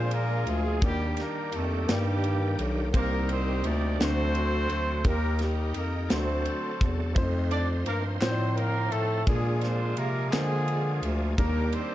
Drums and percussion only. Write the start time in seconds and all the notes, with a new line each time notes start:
0.11 ride bell
0.47 ride bell
0.82 kick, ride bell
1.17 snare, ride bell
1.52 ride bell
1.89 snare, ride bell
2.24 ride bell
2.59 ride bell
2.94 kick, ride bell
3.29 ride bell
3.64 ride bell
4.00 snare, ride bell
4.35 ride bell
4.70 ride bell
5.04 kick, ride bell
5.39 snare, ride bell
5.74 ride bell
6.10 snare, ride bell
6.45 ride bell
6.81 kick, ride bell
7.16 kick, ride bell
7.51 ride bell
7.86 ride bell
8.21 snare, clap, ride bell
8.57 ride bell
8.92 ride bell
9.27 kick, ride bell
9.61 snare, ride bell
9.97 ride bell
10.33 snare, clap, ride bell
10.68 ride bell
11.03 ride bell
11.38 kick, ride bell
11.73 ride bell